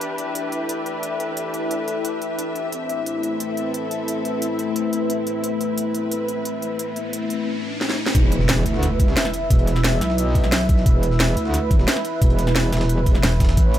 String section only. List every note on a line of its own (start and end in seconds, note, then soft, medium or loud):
0.00 3.23 D4 medium
0.00 3.44 G4 medium
0.00 2.72 B4 medium
0.00 7.47 E5 medium
2.72 7.47 C4 medium
3.12 7.47 E4 medium
3.17 5.50 A4 medium
5.40 7.47 B4 medium